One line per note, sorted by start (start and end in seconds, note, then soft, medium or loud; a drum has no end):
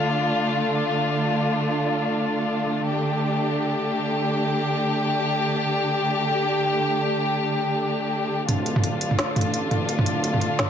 0.00 8.44 D3 medium
0.00 8.44 A3 medium
0.00 8.44 D4 medium
0.00 2.85 F4 medium
2.87 8.46 G4 medium
8.48 9.00 D1 loud
8.48 10.70 D3 medium
8.48 10.70 A3 medium
8.48 10.70 D4 medium
8.48 10.70 F4 medium
8.48 closed hi-hat medium
8.48 mid tom medium
8.66 closed hi-hat medium
8.76 mid tom medium
8.84 closed hi-hat medium
9.01 9.10 D1 medium
9.01 closed hi-hat medium
9.11 mid tom medium
9.19 snare loud
9.19 closed hi-hat medium
9.36 9.88 A1 medium
9.36 closed hi-hat medium
9.36 mid tom medium
9.41 closed hi-hat medium
9.54 closed hi-hat medium
9.71 closed hi-hat soft
9.71 mid tom medium
9.89 10.41 D1 loud
9.89 closed hi-hat medium
9.99 mid tom medium
10.06 closed hi-hat medium
10.24 closed hi-hat medium
10.34 mid tom medium
10.41 10.51 D1 medium
10.41 closed hi-hat medium
10.59 snare loud
10.59 closed hi-hat medium
10.59 mid tom medium